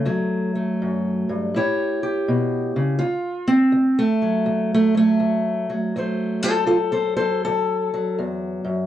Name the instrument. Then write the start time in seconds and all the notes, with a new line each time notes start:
steel-string acoustic guitar
Already playing: A3
0.05 D2 F#3
0.55 A3
0.82 F#2
1.29 G2
1.54 A2 E4 G4 C#5
2.03 G4
2.28 B2
2.76 C#3
2.99 D2 F4
3.48 C4
3.72 D2
3.99 A3
4.22 F#3
4.46 D2
4.74 A3
4.95 F#3 A3
5.20 D2
5.70 F#3
5.96 D2 F#3 A3 C5
6.43 F4 A4 C5
6.67 F4 A4
6.71 D2
6.92 A4 C5
7.17 F#3 A4 C5
7.45 D2 A4
7.94 F#3
8.19 E2
8.64 F#2